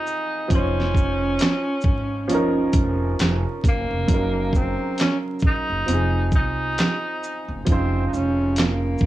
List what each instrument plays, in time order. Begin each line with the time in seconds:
Already playing: upright piano F3 C4 D#4 G#4, tenor saxophone D#4
0.07 shaker
0.48 upright bass F1, upright piano F3 C#4, kick, closed hi-hat
0.53 tenor saxophone C#4, upright piano D#4 C5
0.80 snare
0.95 kick, shaker
1.39 snare, clap, closed hi-hat
1.81 upright bass G#1, kick, shaker
2.28 upright bass F#1, upright piano F3 C#4, closed hi-hat
2.32 upright piano D#4 A#4
2.73 upright bass F1, kick, closed hi-hat, shaker
3.19 upright bass F1, snare, clap, closed hi-hat
3.64 upright bass F#1, kick, closed hi-hat, shaker
3.68 tenor saxophone A#3
3.90 upright bass F1
4.08 upright bass F#1, upright piano C#3 F#3, kick, closed hi-hat
4.12 upright piano D#4 A#4
4.53 kick, shaker
4.57 tenor saxophone C4
4.98 snare, clap, closed hi-hat
5.02 tenor saxophone C#4
5.39 kick, shaker
5.46 tenor saxophone D#4
5.70 upright bass F#1
5.86 upright bass F1, upright piano F3 C4, closed hi-hat
5.90 upright piano D#4 G#4
6.32 upright bass C2, tenor saxophone D#4, kick, shaker
6.78 snare, clap, closed hi-hat
7.23 shaker
7.48 upright bass F#1
7.65 upright bass F1, upright piano C#3 F3, tenor saxophone C4, kick, closed hi-hat
7.70 upright piano D#4 C5
8.07 tenor saxophone D#4
8.13 upright bass F1, tenor saxophone C#4, shaker
8.56 tenor saxophone A#3, snare, clap, closed hi-hat
8.98 upright bass G#1, kick, shaker